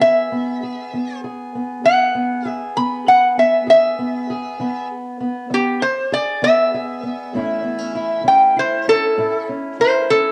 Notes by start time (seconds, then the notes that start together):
Already playing: B3
0.00 E2 G#4 E5
0.32 B3
0.63 G#4
0.93 E3 B3
1.24 G#4
1.55 B3
1.84 E2 G#4 F#5
2.15 B3
2.45 G#4 E5
2.77 E3 B3 B5
3.07 G#4 F#5
3.38 B3 E5
3.66 E2 G#4 E5
3.99 B3
4.30 G#4
4.60 E3 B3
5.21 B3
5.50 E2 B3 G4
5.82 C5
6.12 G#4 D5
6.42 E3 B3 E5
6.74 G#4
7.03 B3
7.34 A2 E3 A3 C#4 E4
7.63 B3
7.79 C#4
7.95 E4
8.24 E3 C#4
8.28 G5
8.56 E4 C5
8.88 C#4 A4
9.18 A2 E4
9.49 C#4
9.80 E4 C5
10.10 E3 C#4 A4